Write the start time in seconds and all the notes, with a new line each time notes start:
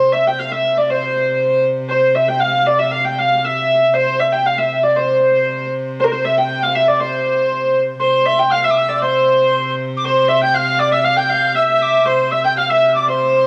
Already playing: C3 C5
0.12 E5
0.27 G5
0.39 F5
0.51 E5
0.78 D5
0.90 C5
1.89 C5
2.15 E5
2.28 G5
2.40 F5
2.66 D5
2.78 E5
2.91 F5
3.04 G5
3.18 F5
3.44 E5
3.94 C3 C5
4.20 E5
4.32 G5
4.46 F5
4.58 E5
4.83 D5
4.96 C5
6.00 C5
6.04 A#4
6.11 C5
6.25 E5
6.38 G5
6.63 F5
6.75 E5
6.88 D5
7.01 C5
8.00 C3 C5 C6
8.26 E5
8.39 G5
8.51 F5 F6
8.64 E5 E6
8.71 D6
8.77 E6
8.89 D5
9.02 C5 C6
9.97 D6
10.04 C5 C6
10.28 E5
10.41 G5 G6
10.54 F5 F6
10.79 D5 D6
10.92 E5 E6
11.04 F5 F6
11.16 G5 G6
11.29 F5
11.54 E5 E6
11.82 D6
12.06 C3 C5 C6
12.31 E5 E6
12.44 G5 G6
12.57 F5 F6
12.69 E5 E6
12.94 D5 D6
13.08 C5 C6